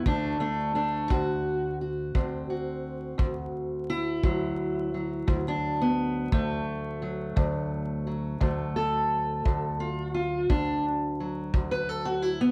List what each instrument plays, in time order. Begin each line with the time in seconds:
0.06 steel-string acoustic guitar D2 A3 D4, kick
0.40 steel-string acoustic guitar A3 D4
0.75 steel-string acoustic guitar A3 D4
1.10 steel-string acoustic guitar D2 F#4, kick
1.81 steel-string acoustic guitar F#4
2.15 steel-string acoustic guitar D2 C4, kick
2.50 steel-string acoustic guitar F#4
3.18 steel-string acoustic guitar D2, kick
3.90 steel-string acoustic guitar E4
4.23 steel-string acoustic guitar D2 F#3, kick
4.94 steel-string acoustic guitar F#3
5.27 steel-string acoustic guitar D2, kick
5.48 steel-string acoustic guitar D4
5.81 steel-string acoustic guitar B3
6.32 steel-string acoustic guitar D2 A3, kick
7.02 steel-string acoustic guitar F#3
7.36 steel-string acoustic guitar D2, kick
8.07 steel-string acoustic guitar F#3
8.40 steel-string acoustic guitar D2 A3, kick
8.76 steel-string acoustic guitar A4
9.45 steel-string acoustic guitar D2, kick
9.80 steel-string acoustic guitar F4
10.14 steel-string acoustic guitar F4
10.50 steel-string acoustic guitar D2 D4, kick
11.20 steel-string acoustic guitar F#3
11.54 steel-string acoustic guitar D2, kick
11.71 steel-string acoustic guitar B4
11.89 steel-string acoustic guitar A4
12.05 steel-string acoustic guitar F#4
12.22 steel-string acoustic guitar E4
12.41 steel-string acoustic guitar B3